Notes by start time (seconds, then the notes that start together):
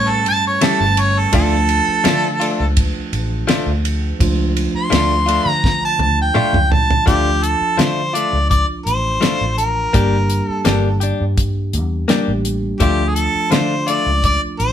Already playing: A2 G3 A3 C#4 E4 C#5
0.10 A4
0.26 G2 A5, ride
0.47 C#5
0.61 E3 G3 A3 C#4 E4 G4 A4, snare, ride
0.80 G1 A5
0.97 C#5, ride
1.19 A4
1.33 D2 F3 A3 D4 F4 A4, kick, ride
1.69 ride
1.88 muted fingered electric bass stroke
2.04 D3 F3 A3 D4 F4, snare, ride
2.40 A3 D4 F4, ride
2.60 C#2
2.77 kick, ride
3.13 A1, ride
3.48 F3 A3 D4 F4, snare, ride
3.66 D2
3.85 ride
4.19 C#2 F3 A3 D4 F4, kick, ride
4.57 ride
4.74 C6, muted fingered electric bass stroke
4.90 D2 F3 A3 D4 F4, snare, ride
5.26 A3 D4 F4, ride
5.46 D3 A#5
5.64 kick, snare
5.85 A5
5.99 D2 A5, high tom
6.22 G5
6.34 F3 A3 D4 F4, mid tom
6.53 C#2, mid tom
6.72 A5, floor tom
6.91 floor tom
7.06 D2 F3 A3 D4 F4 G4, kick, closed hi-hat
7.43 A4, closed hi-hat
7.61 muted fingered electric bass stroke
7.78 D3 F3 A3 D4 F4 C5, snare, closed hi-hat
8.13 A3 D4 F4 D5, closed hi-hat
8.33 C#2
8.50 D5, kick, closed hi-hat
8.86 A1 C5, closed hi-hat
9.21 F3 A3 D4 F4, snare, closed hi-hat
9.41 A1
9.58 A#4, closed hi-hat
9.93 G1 G3 A#3 D4 G4, kick, closed hi-hat
10.30 closed hi-hat
10.49 A4, muted fingered electric bass stroke
10.65 G1 A#3 D4 G4, snare, closed hi-hat
11.00 D4 G4, closed hi-hat
11.21 G2
11.38 kick, closed hi-hat
11.73 E2, closed hi-hat
12.08 G3 A#3 D4 G4, snare, closed hi-hat
12.28 A1
12.45 closed hi-hat
12.80 D2 F3 A3 D4 F4 G4, kick, closed hi-hat
13.09 G#4
13.15 A4, closed hi-hat
13.35 muted fingered electric bass stroke
13.51 D3 F3 A3 D4 F4 C5, snare, closed hi-hat
13.87 A3 D4 F4 D5, closed hi-hat
14.06 C#2
14.24 D5, kick, closed hi-hat
14.59 A1 C5, closed hi-hat